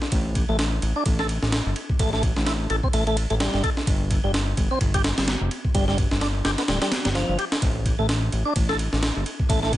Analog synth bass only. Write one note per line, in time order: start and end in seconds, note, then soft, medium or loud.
0.12 0.45 A1 loud
0.49 0.80 A1 loud
0.82 0.93 A1 medium
1.06 1.39 A1 medium
1.42 1.61 A1 medium
1.66 1.74 G1 medium
2.00 2.33 A1 loud
2.37 2.67 A1 loud
2.70 2.81 A1 medium
2.94 3.26 A1 medium
3.30 3.49 A1 medium
3.54 3.62 G1 medium
3.87 4.20 G1 medium
4.24 4.54 G1 loud
4.57 4.68 G1 medium
4.81 5.14 G1 medium
5.18 5.36 G1 medium
5.41 5.49 F1 medium
5.75 6.08 G1 loud
6.12 6.42 G1 loud
6.45 6.56 G1 medium
6.68 6.79 D1 loud
7.05 7.24 G1 loud
7.29 7.37 G1 medium
7.62 7.95 A1 loud
7.99 8.29 A1 loud
8.33 8.44 A1 medium
8.56 8.89 A1 medium
8.93 9.11 A1 medium
9.16 9.24 G1 medium
9.50 9.77 A1 loud